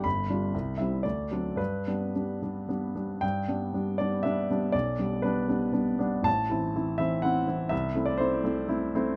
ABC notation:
X:1
M:3/4
L:1/16
Q:1/4=120
K:G
V:1 name="Grand piano"
b6 e2 d4 | B8 z4 | g6 d2 e4 | d4 B8 |
a6 e2 f4 | e3 d c8 |]
V:2 name="Grand piano"
G,,,2 [G,D=F]2 C,,2 [G,CE]2 D,,2 [^F,CD]2 | G,,2 [G,B,D]2 [G,B,D]2 [G,B,D]2 [G,B,D]2 [G,B,D]2 | G,,2 [G,B,D]2 [G,B,D]2 [G,B,D]2 [G,B,D]2 [G,B,D]2 | B,,,2 [G,B,D]2 [G,B,D]2 [G,B,D]2 [G,B,D]2 [G,B,D]2 |
A,,,2 [E,CE]2 [E,CE]2 [E,CE]2 [E,CE]2 [E,CE]2 | C,,2 [A,CE]2 [A,CE]2 [A,CE]2 [A,CE]2 [A,CE]2 |]